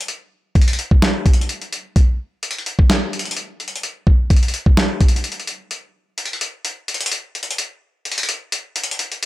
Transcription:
0.01 closed hi-hat medium
0.08 closed hi-hat medium
0.55 kick loud
0.55 closed hi-hat soft
0.61 closed hi-hat medium
0.68 closed hi-hat medium
0.73 closed hi-hat medium
0.79 closed hi-hat medium
0.91 kick medium
1.02 snare loud
1.02 closed hi-hat medium
1.26 kick loud
1.26 closed hi-hat medium
1.33 closed hi-hat medium
1.41 closed hi-hat medium
1.49 closed hi-hat medium
1.62 closed hi-hat soft
1.73 closed hi-hat medium
1.96 kick loud
1.96 closed hi-hat medium
2.43 closed hi-hat medium
2.51 closed hi-hat medium
2.58 closed hi-hat soft
2.66 closed hi-hat medium
2.79 kick medium
2.90 snare loud
2.90 closed hi-hat medium
3.13 closed hi-hat medium
3.19 closed hi-hat medium
3.25 closed hi-hat medium
3.31 closed hi-hat loud
3.37 closed hi-hat medium
3.60 closed hi-hat soft
3.68 closed hi-hat medium
3.76 closed hi-hat medium
3.83 closed hi-hat medium
4.07 kick medium
4.30 kick loud
4.30 closed hi-hat medium
4.36 closed hi-hat medium
4.43 closed hi-hat medium
4.48 closed hi-hat medium
4.54 closed hi-hat medium
4.66 kick medium
4.77 snare loud
4.77 closed hi-hat medium
5.01 kick loud
5.01 closed hi-hat medium
5.08 closed hi-hat medium
5.16 closed hi-hat medium
5.24 closed hi-hat medium
5.32 closed hi-hat medium
5.40 closed hi-hat soft
5.47 closed hi-hat medium
5.71 closed hi-hat medium
6.18 closed hi-hat medium
6.25 closed hi-hat medium
6.33 closed hi-hat soft
6.41 closed hi-hat medium
6.65 closed hi-hat medium
6.88 closed hi-hat soft
6.94 closed hi-hat medium
7.01 closed hi-hat medium
7.06 closed hi-hat medium
7.12 closed hi-hat medium
7.35 closed hi-hat soft
7.43 closed hi-hat medium
7.51 closed hi-hat medium
7.58 closed hi-hat medium
8.05 closed hi-hat soft
8.12 closed hi-hat medium
8.18 closed hi-hat medium
8.23 closed hi-hat medium
8.29 closed hi-hat medium
8.52 closed hi-hat medium
8.76 closed hi-hat medium
8.84 closed hi-hat medium
8.91 closed hi-hat medium
8.99 closed hi-hat medium
9.12 closed hi-hat soft
9.23 closed hi-hat medium

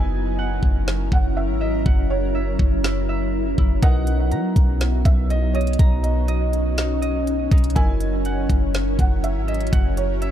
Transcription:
0.00 0.60 F#1 loud
0.00 3.79 F#3 medium
0.00 3.79 C#4 medium
0.00 2.50 E4 medium
0.00 3.79 E4 medium
0.00 3.79 A#4 medium
0.00 1.08 G#5 loud
0.39 1.85 F#5 medium
0.63 1.10 F#1 loud
0.63 kick medium
0.88 snare loud
1.12 1.51 F#1 loud
1.12 1.36 F#5 medium
1.12 kick medium
1.37 1.60 E5 medium
1.49 1.84 G#1 loud
1.61 1.85 D#5 medium
1.61 2.34 E5 medium
1.86 2.57 F#1 loud
1.86 3.46 F#5 medium
1.86 kick loud
2.10 2.80 C#5 medium
2.35 3.09 E5 medium
2.59 3.54 F#1 loud
2.59 kick medium
2.84 3.58 E4 medium
2.84 snare loud
3.09 3.89 E5 medium
3.58 3.82 F#1 loud
3.58 3.89 E4 medium
3.58 kick medium
3.83 4.33 B1 loud
3.83 7.72 F#3 medium
3.83 5.77 B3 medium
3.83 7.72 D#4 medium
3.83 6.53 D#4 loud
3.83 7.72 A#4 medium
3.83 5.77 B4 medium
3.83 5.01 F#5 loud
3.83 kick loud
3.83 closed hi-hat medium
4.07 closed hi-hat medium
4.31 4.55 F#3 medium
4.31 5.78 A#5 medium
4.31 closed hi-hat medium
4.56 5.03 B1 loud
4.56 kick medium
4.56 closed hi-hat medium
4.81 snare loud
4.81 closed hi-hat medium
5.05 5.76 B1 loud
5.05 5.29 E5 medium
5.05 kick medium
5.05 closed hi-hat medium
5.30 5.54 D#5 medium
5.30 closed hi-hat medium
5.54 5.78 C#5 medium
5.54 6.28 D#5 medium
5.54 closed hi-hat soft
5.61 closed hi-hat soft
5.67 closed hi-hat medium
5.73 closed hi-hat medium
5.79 7.47 B1 loud
5.79 10.31 C#4 medium
5.79 7.74 C#5 medium
5.79 7.27 A#5 medium
5.79 kick loud
5.79 closed hi-hat medium
6.04 6.73 D#5 medium
6.04 closed hi-hat medium
6.28 7.01 D#5 medium
6.28 closed hi-hat medium
6.53 closed hi-hat medium
6.78 7.51 D#4 medium
6.78 snare loud
6.78 closed hi-hat medium
7.02 7.82 D#5 medium
7.02 closed hi-hat medium
7.27 closed hi-hat medium
7.51 7.75 B1 loud
7.51 7.82 D#4 loud
7.51 kick medium
7.51 closed hi-hat soft
7.58 closed hi-hat soft
7.64 closed hi-hat medium
7.70 closed hi-hat medium
7.76 8.47 F#1 loud
7.76 10.31 F#3 medium
7.76 10.31 E4 medium
7.76 9.71 E4 medium
7.76 10.31 A#4 medium
7.76 8.95 G#5 loud
7.76 kick loud
7.76 closed hi-hat medium
8.00 closed hi-hat medium
8.25 9.72 F#5 medium
8.25 closed hi-hat medium
8.50 8.97 F#1 loud
8.50 kick medium
8.50 closed hi-hat medium
8.74 snare loud
8.74 closed hi-hat medium
8.99 9.37 F#1 loud
8.99 9.23 F#5 medium
8.99 kick medium
8.99 closed hi-hat medium
9.24 9.47 E5 medium
9.24 closed hi-hat medium
9.36 9.71 G#1 loud
9.48 9.71 D#5 medium
9.48 10.21 E5 medium
9.48 closed hi-hat soft
9.54 closed hi-hat soft
9.61 closed hi-hat medium
9.67 closed hi-hat medium
9.72 10.31 F#1 loud
9.72 10.31 F#4 medium
9.72 10.31 F#5 medium
9.72 kick loud
9.72 closed hi-hat medium
9.97 10.31 C#5 medium
9.97 closed hi-hat medium
10.22 10.31 E5 medium
10.22 closed hi-hat medium

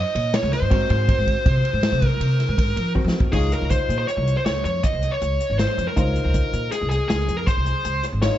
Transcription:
0.00 0.35 D#5 loud
0.15 0.37 A#2 medium
0.15 ride medium
0.34 0.51 C#5 medium
0.34 snare loud
0.34 ride medium
0.43 0.50 C#2 medium
0.53 2.06 C5 loud
0.53 snare soft
0.53 ride medium
0.62 0.69 G2 medium
0.70 0.86 G#2 loud
0.70 2.91 C4 medium
0.70 2.91 F#4 medium
0.70 2.91 A#4 medium
0.70 kick medium
0.70 ride medium
0.90 1.12 G#2 loud
0.90 ride medium
1.09 kick loud
1.09 ride medium
1.18 1.32 G#2 loud
1.27 kick medium
1.27 ride medium
1.46 1.60 C3 loud
1.46 kick loud
1.46 ride medium
1.65 ride medium
1.73 1.88 G#2 medium
1.83 snare loud
1.83 ride medium
1.92 2.07 C3 medium
2.02 kick medium
2.02 ride medium
2.06 2.92 A#4 loud
2.20 2.42 C3 medium
2.20 ride medium
2.40 snare soft
2.40 ride medium
2.49 2.71 G#2 medium
2.58 kick loud
2.58 ride medium
2.76 2.99 F3 medium
2.76 ride medium
2.95 3.33 C4 medium
2.95 3.32 F#4 soft
2.95 3.33 A#4 medium
2.95 kick medium
3.04 3.12 F3 medium
3.04 snare medium
3.20 3.31 D#2 medium
3.20 kick loud
3.32 3.55 C#2 medium
3.32 5.92 D#4 medium
3.32 5.92 F4 soft
3.32 3.52 G#4 medium
3.32 5.92 C#5 soft
3.32 kick medium
3.32 crash medium
3.52 3.70 A#4 medium
3.52 closed hi-hat medium
3.61 3.76 C#2 medium
3.70 3.97 C5 medium
3.70 kick medium
3.70 closed hi-hat medium
3.89 4.04 A#2 medium
3.89 closed hi-hat medium
3.98 4.08 C5 medium
4.08 4.37 C#5 medium
4.08 closed hi-hat medium
4.17 4.32 C2 medium
4.27 closed hi-hat medium
4.37 4.45 C5 medium
4.45 4.61 C#2 medium
4.45 4.63 C#5 medium
4.45 snare medium
4.45 closed hi-hat medium
4.65 4.79 F2 medium
4.65 4.84 C#5 medium
4.65 closed hi-hat medium
4.83 5.13 D#5 medium
4.83 kick loud
4.83 closed hi-hat medium
4.93 5.08 C2 medium
5.03 closed hi-hat medium
5.11 5.58 C#5 medium
5.22 5.36 C#2 medium
5.22 closed hi-hat medium
5.41 closed hi-hat medium
5.50 5.64 G#1 medium
5.58 5.88 C5 medium
5.58 snare medium
5.58 closed hi-hat medium
5.78 5.85 F2 medium
5.78 closed hi-hat medium
5.88 6.68 A#4 medium
5.96 6.19 C#2 medium
5.96 8.19 D#4 soft
5.96 8.19 F4 soft
5.96 8.19 C5 medium
5.96 kick medium
5.96 closed hi-hat medium
6.16 closed hi-hat medium
6.25 6.40 C#2 medium
6.34 kick loud
6.34 closed hi-hat medium
6.53 6.68 A#2 medium
6.53 closed hi-hat medium
6.72 6.88 G#4 medium
6.72 snare soft
6.72 closed hi-hat medium
6.81 6.96 C2 medium
6.90 7.07 G#4 medium
6.90 snare soft
6.90 closed hi-hat medium
7.08 7.24 C#2 medium
7.08 7.35 G#4 medium
7.08 snare medium
7.08 closed hi-hat medium
7.28 7.43 F2 medium
7.28 closed hi-hat medium
7.37 7.47 A#4 medium
7.47 8.03 C5 medium
7.47 kick loud
7.47 closed hi-hat medium
7.57 7.71 C2 medium
7.66 closed hi-hat medium
7.85 8.00 C#2 medium
7.85 closed hi-hat medium
8.03 snare soft
8.03 closed hi-hat medium
8.12 8.27 G#1 medium
8.22 8.38 D#4 soft
8.22 8.38 F4 soft
8.22 8.38 C#5 soft
8.22 8.38 C#5 medium
8.22 snare loud
8.22 closed hi-hat medium

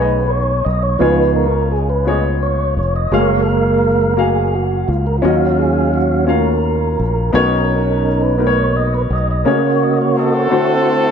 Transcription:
0.00 0.61 B1 medium
0.00 1.02 B2 medium
0.00 0.99 B3 medium
0.00 1.02 D#4 medium
0.00 1.01 G#4 medium
0.00 0.31 B4 medium
0.00 1.01 C#5 medium
0.00 0.70 D#5 medium
0.30 0.66 C#5 loud
0.65 0.98 B1 medium
0.65 0.83 D#5 medium
0.83 1.01 C#5 medium
0.99 2.78 C#2 medium
0.99 2.02 C#3 medium
0.99 1.46 F3 soft
0.99 1.72 B3 medium
0.99 1.47 B3 soft
0.99 1.47 D#4 medium
0.99 1.72 F4 medium
0.99 1.73 G#4 medium
0.99 1.34 B4 loud
0.99 1.73 C#5 medium
1.36 1.69 A#4 medium
1.72 1.89 G#4 medium
1.90 2.07 B4 medium
2.05 2.78 B3 medium
2.05 2.78 F4 medium
2.05 2.78 G#4 medium
2.05 2.79 C#5 medium
2.05 2.24 D#5 medium
2.43 2.75 C#5 medium
2.77 3.09 F1 medium
2.77 2.94 C#5 medium
2.96 3.13 D#5 medium
3.11 4.83 F#1 medium
3.11 3.18 G#3 medium
3.11 4.13 G#3 soft
3.11 4.14 A#3 soft
3.11 3.84 F#4 medium
3.11 3.84 G#4 medium
3.11 3.41 C#5 loud
3.11 4.14 F5 medium
3.11 3.85 F5 medium
3.18 3.87 A#3 medium
3.42 3.48 A4 medium
3.49 3.83 A#4 medium
3.84 4.00 A#4 medium
4.01 4.18 A#4 medium
4.17 4.89 A#3 medium
4.17 4.89 F#4 medium
4.17 4.90 G#4 medium
4.17 4.55 G#4 medium
4.17 4.90 F5 medium
4.55 4.90 F#4 medium
4.88 5.20 C#2 medium
4.88 5.06 F4 medium
5.07 5.17 A#4 medium
5.18 5.94 C#4 medium
5.18 5.24 F4 medium
5.23 6.96 D#2 medium
5.23 6.25 D#3 soft
5.23 6.25 F#3 medium
5.23 6.25 C#4 medium
5.23 5.95 F4 medium
5.23 5.95 F#4 medium
5.23 5.60 F#4 medium
5.23 5.96 D#5 medium
5.23 6.26 F5 medium
5.58 5.91 G#4 medium
5.94 6.26 F#4 medium
6.27 7.00 C#4 medium
6.27 7.00 F4 medium
6.27 7.01 F#4 medium
6.27 7.31 A#4 medium
6.27 7.01 F5 medium
6.99 7.32 A#1 medium
7.33 9.06 B1 loud
7.33 8.36 B2 medium
7.33 8.05 B3 medium
7.33 8.36 C#4 soft
7.33 8.06 D#4 medium
7.33 8.36 D#4 medium
7.33 8.04 A#4 medium
7.33 8.06 A#4 medium
7.33 8.07 C#5 loud
8.05 8.13 A#4 medium
8.14 8.22 A#4 medium
8.22 8.59 B4 medium
8.38 9.11 B3 medium
8.38 9.11 D#4 medium
8.38 9.12 A#4 medium
8.38 8.46 B4 medium
8.47 9.15 C#5 medium
8.59 8.76 C#5 medium
8.77 8.94 D#5 loud
8.95 9.02 B4 medium
9.10 9.43 B1 medium
9.10 9.28 D#5 loud
9.31 9.62 D#5 medium
9.45 10.48 C#3 medium
9.45 10.48 C#3 soft
9.45 10.17 A#3 medium
9.45 10.47 A#3 medium
9.45 10.18 C#4 medium
9.45 10.18 F#4 medium
9.45 10.48 F#4 medium
9.45 10.19 C#5 medium
9.67 9.83 C#5 medium
9.83 9.98 D#5 medium
10.02 10.17 C#5 medium
10.16 11.11 C4 medium
10.16 11.11 F#4 medium
10.16 11.11 A4 medium
10.16 10.34 D#5 medium
10.37 10.72 C#5 medium
10.50 11.11 D3 medium
10.50 11.11 A3 medium
10.50 11.11 C4 medium
10.50 11.11 D4 medium
10.50 11.11 E4 medium
10.50 11.11 F#4 medium
10.50 11.11 C5 medium
10.71 11.11 C5 medium

